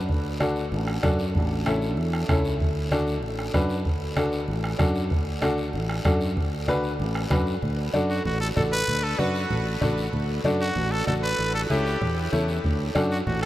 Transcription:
0.09 fingered electric bass D2, bombo low, high conga, long guiro
0.40 upright piano D4 F#4 A4, bombo rim, high conga, short guiro
0.56 short guiro
0.72 fingered electric bass A1, high conga, long guiro
0.88 bombo rim
1.03 fingered electric bass F#2, upright piano D4 F#4 A4, bombo low, bombo rim, high conga, short guiro
1.19 short guiro
1.35 fingered electric bass A1, bombo low, high conga, long guiro
1.66 upright piano C#4 E4 A4, bombo rim, high conga, short guiro
1.81 short guiro
1.97 fingered electric bass E2, high conga, long guiro
2.13 bombo rim
2.28 fingered electric bass C#2, upright piano C#4 E4 A4, bombo low, bombo rim, high conga, short guiro
2.45 short guiro
2.60 fingered electric bass D2, bombo low, high conga, long guiro
2.91 upright piano D4 F#4 A4, bombo rim, high conga, short guiro
3.07 short guiro
3.23 fingered electric bass A1, high conga, long guiro
3.39 bombo rim
3.54 fingered electric bass F#2, upright piano D4 F#4 B4, bombo low, bombo rim, high conga, short guiro
3.69 short guiro
3.85 fingered electric bass D2, bombo low, high conga, long guiro
4.16 upright piano D4 F#4 A4, bombo rim, high conga, short guiro
4.32 short guiro
4.48 fingered electric bass A1, high conga, long guiro
4.64 bombo rim
4.78 fingered electric bass F#2, upright piano D4 F#4 A4, bombo low, bombo rim, high conga, short guiro
4.95 short guiro
5.10 fingered electric bass D2, bombo low, high conga, long guiro
5.41 upright piano D4 F#4 A4, bombo rim, high conga, short guiro
5.58 short guiro
5.73 fingered electric bass A1, high conga, long guiro
5.89 bombo rim
6.05 fingered electric bass F#2, upright piano D4 F#4 A4, bombo low, bombo rim, high conga, short guiro
6.21 short guiro
6.37 fingered electric bass D2, bombo low, high conga, long guiro
6.68 upright piano D4 F#4 B4, bombo rim, high conga, short guiro
6.84 short guiro
6.99 fingered electric bass A1, high conga, long guiro
7.15 bombo rim
7.30 fingered electric bass F#2, upright piano D4 F#4 B4, bombo low, bombo rim, high conga, short guiro
7.47 short guiro
7.62 fingered electric bass D2, high conga, low conga, long guiro
7.93 fingered electric bass F#2, upright piano D4 F#4 A4, high conga, short guiro
8.10 trumpet F#4, short guiro
8.25 fingered electric bass A1, trumpet F#4, high conga, low conga, long guiro
8.40 trumpet A4
8.56 fingered electric bass A1, upright piano D4 F#4 A4, trumpet A4, high conga, low conga, short guiro
8.72 trumpet B4, short guiro
8.88 fingered electric bass D2, high conga, low conga, long guiro
9.04 trumpet A4
9.18 fingered electric bass F#2, upright piano D4 F#4 B4, trumpet F#4, high conga, short guiro
9.35 short guiro
9.51 fingered electric bass A1, high conga, low conga, long guiro
9.81 fingered electric bass A1, upright piano D4 F#4 A4, high conga, low conga, short guiro
9.98 short guiro
10.13 fingered electric bass D2, high conga, low conga, long guiro
10.44 fingered electric bass F#2, upright piano D4 F#4 A4, high conga, short guiro
10.61 trumpet F#4, short guiro
10.76 fingered electric bass A1, high conga, low conga, long guiro
10.91 trumpet A4
11.07 fingered electric bass A1, upright piano D4 F#4 A4, trumpet A4, high conga, short guiro
11.23 trumpet B4, short guiro
11.39 fingered electric bass A1, high conga, long guiro
11.55 trumpet A4
11.70 fingered electric bass C#2, upright piano C#4 E4 A4, trumpet G4, high conga, short guiro
11.86 short guiro
12.01 fingered electric bass E2, high conga, low conga, long guiro
12.32 fingered electric bass E2, upright piano C#4 E4 A4, high conga, short guiro
12.48 short guiro
12.64 fingered electric bass D2, bombo low, high conga, long guiro
12.95 fingered electric bass F#2, upright piano D4 F#4 A4, bombo rim, high conga, short guiro
13.11 trumpet F#4, short guiro
13.26 fingered electric bass A1, trumpet F#4, high conga, low conga, long guiro
13.41 trumpet A4

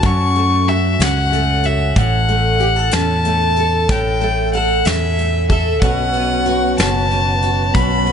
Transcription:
Already playing: nylon-string guitar A3 C#4 F#4
0.03 nylon-string guitar F#2, fretless electric bass F#2, violin C#6, kick, closed hi-hat
0.35 nylon-string guitar A3, closed hi-hat
0.68 nylon-string guitar F#4, violin E5, closed hi-hat
0.99 fretless electric bass C#2, nylon-string guitar C#4, violin F#5, snare, closed hi-hat
1.32 nylon-string guitar A3, closed hi-hat
1.64 nylon-string guitar F#4, violin E5, closed hi-hat
1.96 fretless electric bass A1, nylon-string guitar A2, violin F#5, kick, closed hi-hat
2.28 nylon-string guitar A3, closed hi-hat
2.60 nylon-string guitar G4, closed hi-hat
2.76 nylon-string guitar A4
2.91 fretless electric bass E2, nylon-string guitar C#4, violin A5, snare, closed hi-hat
3.25 nylon-string guitar A3, closed hi-hat
3.56 nylon-string guitar A4, closed hi-hat
3.89 fretless electric bass A1, nylon-string guitar A2, violin G5, kick, closed hi-hat
4.21 nylon-string guitar A3, closed hi-hat
4.53 nylon-string guitar A4, violin F#5, closed hi-hat
4.85 fretless electric bass E2, nylon-string guitar C#4, violin E5, snare, closed hi-hat
5.19 nylon-string guitar A3, closed hi-hat
5.49 nylon-string guitar A4, violin E5, kick, closed hi-hat
5.81 fretless electric bass B1, nylon-string guitar B2, tonewheel organ F#3 B3 C#4, violin F#5, kick, closed hi-hat
6.14 nylon-string guitar B3, closed hi-hat
6.46 nylon-string guitar F#4, closed hi-hat
6.78 fretless electric bass F#1, nylon-string guitar C#4, violin A5, snare, closed hi-hat
7.11 nylon-string guitar B3, closed hi-hat
7.42 nylon-string guitar F#4, closed hi-hat
7.74 fretless electric bass B1, nylon-string guitar B2, violin B5, kick, closed hi-hat
8.06 nylon-string guitar B3, closed hi-hat

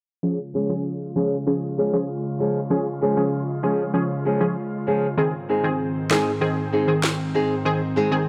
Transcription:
0.23 analog synth pad C#3 G#3 F4, synth stab F3 C#4 G#4
0.54 nylon-string guitar F3 G#3 C#4 G#4
0.69 synth stab F3 C#4 G#4
1.16 nylon-string guitar F3 G#3 C#4 G#4, synth stab F3 C#4 G#4
1.47 synth stab F3 C#4 G#4
1.77 nylon-string guitar F3 G#3 C#4 G#4
1.93 synth stab F3 C#4 G#4
2.39 nylon-string guitar F3 G#3 C#4 G#4
2.70 synth stab F3 C#4 G#4
3.01 nylon-string guitar F3 G#3 C#4 G#4
3.17 synth stab F3 C#4 G#4
3.63 nylon-string guitar F3 G#3 C#4 G#4, synth stab F3 C#4 G#4
3.94 synth stab F3 C#4 G#4
4.25 nylon-string guitar F3 G#3 C#4 G#4
4.40 synth stab F3 C#4 G#4
4.87 nylon-string guitar F3 G#3 C#4 G#4
5.18 analog synth pad G#2 D#3 C4, synth stab D#3 C4 G#4
5.49 nylon-string guitar G#3 C4 D#4 G#4
5.64 synth stab D#3 C4 G#4
6.10 synth stab D#3 C4 G#4, nylon-string guitar G#3 C4 D#4 G#4, snare, clap
6.41 synth stab D#3 C4 G#4
6.72 nylon-string guitar G#3 C4 D#4 G#4
6.88 synth stab D#3 C4 G#4
7.03 snare, clap
7.34 nylon-string guitar G#3 C4 D#4 G#4
7.65 synth stab D#3 C4 G#4
7.96 nylon-string guitar G#3 C4 D#4 G#4
8.11 synth stab D#3 C4 G#4

